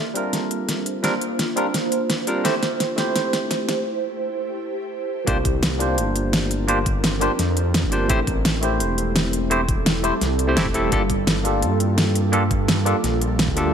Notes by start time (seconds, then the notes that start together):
Already playing: A#3 D4 F4 C5
0.13 G3 C4 D4 F4 A#4, closed hi-hat
0.33 snare, closed hi-hat
0.51 closed hi-hat
0.69 snare, closed hi-hat
0.86 closed hi-hat
1.03 G3 C4 D4 F4 A#4, snare, closed hi-hat
1.21 closed hi-hat
1.39 snare, closed hi-hat
1.56 G3 C4 D4 F4 A#4, closed hi-hat
1.74 snare, closed hi-hat
1.92 closed hi-hat
2.10 snare, closed hi-hat
2.27 G3 C4 D4 F4 A#4, closed hi-hat
2.44 A3 C4 E4 G4 C5, snare, closed hi-hat
2.63 snare, closed hi-hat
2.80 snare, closed hi-hat
2.96 A3 C4 E4 G4 C5, snare, closed hi-hat
3.16 snare, closed hi-hat
3.33 snare, closed hi-hat
3.51 snare, closed hi-hat
3.69 snare, closed hi-hat
5.26 C2 F3 A#3 C4 D4 F4 G4 A#4 C5, kick, closed hi-hat
5.45 kick, closed hi-hat
5.63 snare, closed hi-hat
5.78 A#3 D4 F4 G4 C5, closed hi-hat
5.98 G1, closed hi-hat
6.16 closed hi-hat
6.33 snare, closed hi-hat
6.51 closed hi-hat
6.68 A#3 D4 F4 G4 C5, closed hi-hat
6.86 kick, closed hi-hat
7.04 snare, closed hi-hat
7.20 A#3 D4 F4 G4 C5, closed hi-hat
7.39 F2, snare, closed hi-hat
7.57 closed hi-hat
7.74 snare, closed hi-hat
7.83 G1, kick
7.91 A#3 D4 F4 G4 C5, closed hi-hat
8.09 A1 G3 A3 C4 E4 G4 A4 C5, kick, closed hi-hat
8.27 kick, closed hi-hat
8.45 snare, closed hi-hat
8.61 A3 C4 E4 G4 C5, closed hi-hat
8.80 E1, closed hi-hat
8.98 closed hi-hat
9.16 snare, closed hi-hat
9.33 closed hi-hat
9.50 A3 C4 E4 G4 C5, closed hi-hat
9.69 kick, closed hi-hat
9.86 snare, closed hi-hat
10.03 A3 C4 E4 G4 C5, closed hi-hat
10.21 C2, snare, closed hi-hat
10.39 closed hi-hat
10.47 A3 C4 E4 G4 C5
10.56 E1 A3 C4 E4 G4 A4, snare, closed hi-hat
10.66 kick
10.74 E1 A3 C4 E4 G4 A4, closed hi-hat
10.91 G1 A#3 D4 F4 G4 A4, kick, closed hi-hat
11.10 kick, closed hi-hat
11.27 snare, closed hi-hat
11.43 A#3 D4 F4 G4 A4, closed hi-hat
11.62 G2, closed hi-hat
11.80 closed hi-hat
11.98 snare, closed hi-hat
12.15 closed hi-hat
12.32 A#3 D4 F4 G4 A4, closed hi-hat
12.51 kick, closed hi-hat
12.68 snare, closed hi-hat
12.85 A#3 D4 F4 G4 A4, closed hi-hat
13.04 A#1, snare, closed hi-hat
13.21 closed hi-hat
13.39 snare, closed hi-hat
13.48 D2, kick
13.56 A#3 D4 F4 G4 A4, closed hi-hat